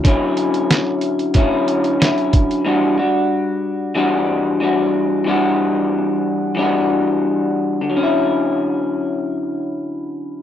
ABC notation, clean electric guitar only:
X:1
M:4/4
L:1/8
Q:1/4=92
K:D
V:1 name="Clean electric guitar"
[D,F,CE]4 [D,F,CE]2 [D,F,CE]2 | [E,G,DF] [G,DF]3 [E,G,DF]2 [E,G,DF]2 | [E,G,DF]4 [E,G,DF]4 | [D,F,CE]8 |]